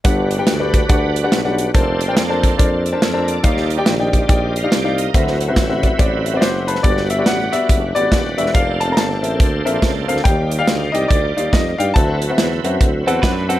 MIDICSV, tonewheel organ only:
0, 0, Header, 1, 2, 480
1, 0, Start_track
1, 0, Key_signature, 1, "major"
1, 0, Tempo, 425230
1, 58, Time_signature, 4, 2, 24, 8
1, 15346, End_track
2, 0, Start_track
2, 0, Title_t, "Tonewheel organ"
2, 0, Program_c, 0, 16
2, 57, Note_on_c, 0, 62, 62
2, 63, Note_on_c, 0, 55, 64
2, 63, Note_on_c, 0, 71, 75
2, 64, Note_on_c, 0, 66, 58
2, 1934, Note_off_c, 0, 62, 0
2, 1937, Note_off_c, 0, 55, 0
2, 1937, Note_off_c, 0, 66, 0
2, 1937, Note_off_c, 0, 71, 0
2, 1969, Note_on_c, 0, 58, 68
2, 1970, Note_on_c, 0, 72, 74
2, 1971, Note_on_c, 0, 69, 63
2, 1974, Note_on_c, 0, 62, 62
2, 3201, Note_off_c, 0, 69, 0
2, 3201, Note_off_c, 0, 72, 0
2, 3218, Note_on_c, 0, 81, 61
2, 3228, Note_on_c, 0, 76, 51
2, 3395, Note_off_c, 0, 76, 0
2, 3396, Note_off_c, 0, 81, 0
2, 3408, Note_on_c, 0, 76, 65
2, 3421, Note_on_c, 0, 70, 56
2, 3691, Note_off_c, 0, 76, 0
2, 3698, Note_off_c, 0, 70, 0
2, 3702, Note_on_c, 0, 74, 60
2, 3708, Note_on_c, 0, 69, 50
2, 3849, Note_off_c, 0, 58, 0
2, 3851, Note_off_c, 0, 62, 0
2, 3872, Note_off_c, 0, 74, 0
2, 3885, Note_on_c, 0, 65, 63
2, 3885, Note_on_c, 0, 74, 73
2, 3888, Note_on_c, 0, 55, 70
2, 3890, Note_on_c, 0, 63, 61
2, 4163, Note_off_c, 0, 69, 0
2, 5118, Note_off_c, 0, 74, 0
2, 5142, Note_on_c, 0, 82, 58
2, 5148, Note_on_c, 0, 77, 51
2, 5317, Note_off_c, 0, 82, 0
2, 5320, Note_off_c, 0, 77, 0
2, 5328, Note_on_c, 0, 74, 52
2, 5328, Note_on_c, 0, 79, 63
2, 5610, Note_off_c, 0, 74, 0
2, 5610, Note_off_c, 0, 79, 0
2, 5622, Note_on_c, 0, 75, 59
2, 5631, Note_on_c, 0, 70, 53
2, 5767, Note_off_c, 0, 65, 0
2, 5769, Note_off_c, 0, 55, 0
2, 5769, Note_off_c, 0, 63, 0
2, 5810, Note_on_c, 0, 71, 76
2, 5811, Note_on_c, 0, 60, 61
2, 5813, Note_on_c, 0, 54, 66
2, 5815, Note_on_c, 0, 64, 60
2, 6079, Note_off_c, 0, 75, 0
2, 6084, Note_off_c, 0, 70, 0
2, 7691, Note_off_c, 0, 60, 0
2, 7691, Note_off_c, 0, 71, 0
2, 7693, Note_off_c, 0, 54, 0
2, 7693, Note_off_c, 0, 64, 0
2, 7722, Note_on_c, 0, 66, 53
2, 7724, Note_on_c, 0, 70, 50
2, 7726, Note_on_c, 0, 62, 51
2, 7728, Note_on_c, 0, 55, 59
2, 7788, Note_on_c, 0, 71, 63
2, 7797, Note_off_c, 0, 70, 0
2, 9608, Note_off_c, 0, 66, 0
2, 9610, Note_off_c, 0, 62, 0
2, 9612, Note_off_c, 0, 55, 0
2, 9642, Note_off_c, 0, 71, 0
2, 9659, Note_on_c, 0, 69, 54
2, 9661, Note_on_c, 0, 62, 55
2, 9662, Note_on_c, 0, 58, 58
2, 9663, Note_on_c, 0, 72, 68
2, 11538, Note_off_c, 0, 69, 0
2, 11540, Note_off_c, 0, 58, 0
2, 11540, Note_off_c, 0, 62, 0
2, 11540, Note_off_c, 0, 72, 0
2, 11575, Note_on_c, 0, 74, 67
2, 11579, Note_on_c, 0, 63, 58
2, 11579, Note_on_c, 0, 65, 58
2, 11581, Note_on_c, 0, 53, 47
2, 11632, Note_on_c, 0, 55, 58
2, 11648, Note_off_c, 0, 53, 0
2, 13458, Note_off_c, 0, 74, 0
2, 13460, Note_off_c, 0, 63, 0
2, 13460, Note_off_c, 0, 65, 0
2, 13487, Note_off_c, 0, 55, 0
2, 13501, Note_on_c, 0, 60, 57
2, 13502, Note_on_c, 0, 71, 62
2, 13507, Note_on_c, 0, 54, 60
2, 13511, Note_on_c, 0, 64, 56
2, 15346, Note_off_c, 0, 54, 0
2, 15346, Note_off_c, 0, 60, 0
2, 15346, Note_off_c, 0, 64, 0
2, 15346, Note_off_c, 0, 71, 0
2, 15346, End_track
0, 0, End_of_file